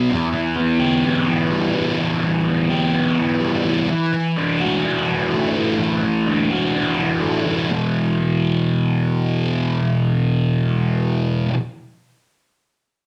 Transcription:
0.10 E2
0.34 E3
0.56 B3
0.80 G4
1.05 B3
1.28 E3
1.51 G3
1.75 E3
2.00 E2
2.23 E3
2.48 B3
2.70 G4
2.94 B3
3.18 E3
3.41 G3
3.65 E3
3.89 E3
4.13 E3
4.37 D4
4.61 F#4
4.84 D4
5.08 E3
5.32 A3
5.55 E3
5.79 E3
6.03 E3
6.27 D4
6.51 F#4
6.75 D4
6.98 E3
7.22 A3
7.46 E3
7.68 E2 B2
7.73 E3

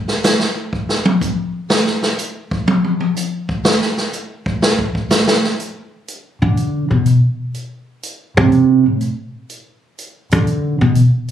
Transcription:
0.08 snare
0.24 snare, hi-hat pedal
0.40 snare
0.73 kick
0.89 snare
1.05 high tom
1.21 kick, hi-hat pedal
1.70 snare
1.86 snare
2.02 snare
2.18 hi-hat pedal
2.51 kick
2.68 high tom
2.84 high tom
3.00 high tom
3.16 hi-hat pedal
3.49 kick
3.65 snare
3.81 snare
3.97 snare
4.13 hi-hat pedal
4.46 kick
4.62 snare
4.79 kick
4.95 kick
5.10 snare, hi-hat pedal
5.27 snare
5.44 snare
5.60 closed hi-hat
6.08 closed hi-hat
6.42 D3
6.57 closed hi-hat
6.91 B2
7.06 closed hi-hat
7.54 closed hi-hat
8.03 closed hi-hat
8.37 C3
8.52 closed hi-hat
8.86 A2
9.01 closed hi-hat
9.50 closed hi-hat
9.99 closed hi-hat
10.31 D3, closed hi-hat
10.47 closed hi-hat
10.81 B2
10.95 closed hi-hat

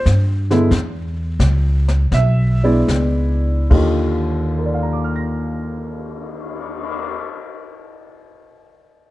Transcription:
0.06 G2, kick, snare, hi-hat pedal
0.50 D3 G#3 B3 E4, snare
0.71 E2, brush sweep, kick, snare
1.39 C#2, kick, snare, hi-hat pedal
1.88 snare
2.12 B1 E5, brush sweep, kick, snare
2.63 G#3 B3 D4 E4 D5
2.88 C#2, kick, snare, hi-hat pedal
3.70 D#2 D3 F4 G4 D#5, kick, crash
4.30 cymbal swell
4.58 A#4
4.66 D5
4.74 F5
4.83 A#5
4.93 D6
5.04 F6
5.16 A#6

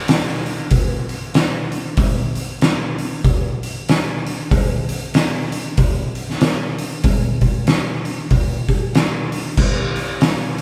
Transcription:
0.08 snare, open hi-hat
0.28 snare
0.46 open hi-hat
0.71 kick, open hi-hat
1.09 open hi-hat
1.34 snare, open hi-hat
1.72 open hi-hat
1.97 kick, open hi-hat
2.35 open hi-hat
2.61 snare, open hi-hat
2.98 open hi-hat
3.25 kick, open hi-hat
3.63 open hi-hat
3.89 snare, open hi-hat
4.27 open hi-hat
4.51 kick, open hi-hat
4.89 open hi-hat
5.14 snare, open hi-hat
5.52 open hi-hat
5.77 kick, open hi-hat
6.15 open hi-hat
6.30 snare
6.41 snare, open hi-hat
6.79 open hi-hat
7.04 kick, open hi-hat
7.41 kick, open hi-hat
7.67 snare, open hi-hat
8.05 open hi-hat
8.31 kick, open hi-hat
8.68 kick, open hi-hat
8.95 snare, open hi-hat
9.32 open hi-hat
9.57 kick, crash
9.96 open hi-hat
10.21 snare, open hi-hat
10.58 open hi-hat

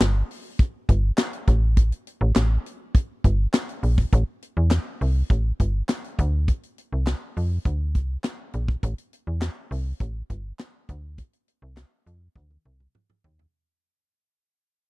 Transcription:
0.01 G1, snare, clap, closed hi-hat
0.31 open hi-hat
0.59 kick, closed hi-hat
0.89 G1, kick, closed hi-hat
1.18 snare, clap, closed hi-hat
1.33 closed hi-hat
1.47 A1, kick, closed hi-hat
1.77 kick, closed hi-hat
1.92 closed hi-hat
2.07 closed hi-hat
2.21 A1
2.36 A1, snare, clap, closed hi-hat
2.66 closed hi-hat
2.95 kick, closed hi-hat
3.24 G1, kick, closed hi-hat
3.54 snare, clap, closed hi-hat
3.69 closed hi-hat
3.83 A#1, open hi-hat
3.98 kick
4.13 A1, kick, closed hi-hat
4.42 closed hi-hat
4.57 E2
4.71 snare, clap, closed hi-hat
5.01 C2, open hi-hat
5.30 A1, kick, closed hi-hat
5.60 G1, kick, closed hi-hat
5.89 snare, clap, closed hi-hat
6.04 closed hi-hat
6.19 D2, kick, closed hi-hat
6.48 kick, closed hi-hat
6.63 closed hi-hat
6.78 closed hi-hat
6.93 C2
7.07 snare, clap, closed hi-hat
7.37 F2, open hi-hat
7.65 D2, kick, closed hi-hat
7.95 C2, kick, closed hi-hat
8.24 snare, clap, closed hi-hat
8.53 A#1, closed hi-hat
8.68 kick
8.83 A1, kick, closed hi-hat
8.98 closed hi-hat
9.13 closed hi-hat
9.27 E2
9.42 snare, clap, closed hi-hat
9.71 C2, open hi-hat
10.00 A1, kick, closed hi-hat
10.30 G1, kick, closed hi-hat
10.59 snare, clap, closed hi-hat
10.89 D2, kick, closed hi-hat
11.18 kick, closed hi-hat
11.33 closed hi-hat
11.48 closed hi-hat
11.62 C2
11.77 snare, clap, closed hi-hat
12.06 F2, closed hi-hat
12.36 D2, kick, high tom
12.51 high tom
12.65 C2, mid tom
12.80 mid tom
12.95 mid tom
13.10 mid tom
13.24 D#2, floor tom
13.39 floor tom

